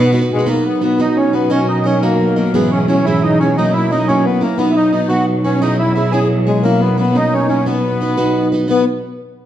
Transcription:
Already playing: B2 B3 D#4 F#4 B4
0.12 B3 D#4 F#4 B4
0.21 D#4 F#4 B4
0.32 B2 G#3
0.39 D#4 F#4 B4
0.46 B2 F#3 A#3 B3 D#4 F#4 B4
0.66 B3
0.81 B3 D#4 F#4 B4
0.99 B3 D#4 F#4 B4
1.16 C#4
1.33 B3 D#4 F#4 B4
1.50 C#4 D#4 F#4 A#4 D#5
1.66 D#4
1.80 D#4
1.84 C#4 F#4 A#4 D#5
2.02 A#3 D#4 F#4 A#4 D#5
2.36 A#3 F#4 A#4 D#5
2.54 G#2 E3 G#3 B3 C#4 E4 G#4
2.71 C#4
2.88 G#3 C#4 E4 G#4
3.05 G#2 E3 G#3 C#4 E4 G#4
3.22 D#4
3.39 C#4 E4 G#4
3.44 G#3
3.56 F#3 A#3 C#4 D#4 E4
3.73 E4
3.90 F#3 A#3 C#4 D#4 E4
4.06 F#3 A#3 C#4 E4
4.24 B3
4.41 A#3 C#4 E4
4.57 B2 F#3 B3 D#4 F#4 B4
4.71 E4
4.75 D#4
4.92 B3 D#4 F#4 B4
5.08 B3 D#4 F#4 B4
5.44 C#4 D#4 F#4 B4
5.60 C#4 D#4 E4 G#4 C#5
5.79 E4
5.94 C#4 E4 G#4 C#5
6.11 C#4 E4 G#4 C#5
6.46 G#3 E4 G#4 C#5
6.63 F#3 A#3 C#4 E4
6.80 B3
6.97 F#3 A#3 B3 C#4 E4
7.15 F#3 A#3 C#4 D#4
7.34 C#4
7.48 A#3 C#4 E4
7.66 B3 D#4 F#4 B4
8.01 B3 D#4 F#4 B4
8.17 B3 D#4 F#4 B4
8.52 D#4 F#4 B4
8.68 B3 D#4 F#4 B4

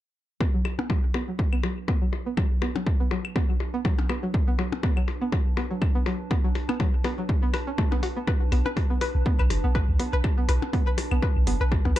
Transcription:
0.41 B3 D4, kick, percussion blips
0.54 F#3
0.65 percussion blips, claves
0.79 B3, percussion blips
0.84 B4
0.90 F#3, kick, percussion blips
1.14 B3, percussion blips
1.28 F#3
1.39 kick, percussion blips
1.46 A5
1.53 B3, claves
1.63 F#3, open hi-hat, percussion blips
1.88 B3, kick, percussion blips
2.02 F#3
2.13 open hi-hat, percussion blips
2.26 B3
2.37 F#3, kick, percussion blips, claves
2.62 B3, percussion blips
2.76 F#3, percussion blips
2.87 kick, percussion blips
3.00 B3
3.11 F#3, percussion blips
3.25 claves
3.36 B3, kick, percussion blips
3.49 F#3
3.60 open hi-hat, percussion blips
3.74 B3
3.85 F#3, kick, percussion blips
3.99 percussion blips
4.09 B3, open hi-hat, percussion blips, claves
4.23 F#3
4.34 kick, percussion blips
4.48 B3
4.59 F#3, open hi-hat, percussion blips
4.72 percussion blips
4.83 B3, kick, open hi-hat, percussion blips
4.97 F#3, claves
5.08 open hi-hat, percussion blips
5.21 B3
5.32 F#3, kick, percussion blips
5.57 B3, open hi-hat, percussion blips
5.71 F#3
5.82 kick, percussion blips, claves
5.95 B3
6.06 F#3, open hi-hat, percussion blips
6.31 B3, kick, percussion blips
6.44 F#3
6.55 open hi-hat, percussion blips
6.69 B3, open hi-hat, percussion blips, claves
6.80 F#3, kick, open hi-hat, percussion blips
7.04 B3, open hi-hat, percussion blips
7.18 F#3
7.29 kick, percussion blips
7.43 B3
7.54 B4, open hi-hat, percussion blips, claves
7.67 C#4
7.78 A3, kick, percussion blips
7.92 B3, percussion blips
8.03 F#4, open hi-hat, percussion blips
8.16 B3
8.27 B4, kick, percussion blips
8.52 B1 B3, open hi-hat, percussion blips, claves
8.66 B4, percussion blips
8.77 kick, open hi-hat, percussion blips
8.90 B3
9.01 B4, open hi-hat, percussion blips
9.15 B1
9.26 B3, kick, percussion blips
9.39 B1 B4, claves
9.50 F#1, open hi-hat, percussion blips
9.64 B1 B3
9.75 B4, kick, percussion blips
9.89 D2
9.99 B3, open hi-hat, percussion blips
10.13 B1 B4
10.24 kick, percussion blips, claves
10.38 B3
10.49 B1 B4, open hi-hat, percussion blips
10.62 percussion blips
10.73 B3, kick, open hi-hat, percussion blips
10.87 B4
10.98 open hi-hat, percussion blips
11.12 B1 B3, claves
11.22 B4, kick, percussion blips
11.36 B1
11.47 F#1 B3, open hi-hat, percussion blips
11.61 B1 B4
11.72 kick, percussion blips
11.85 D2 B3, percussion blips
11.96 B4, open hi-hat, percussion blips, claves

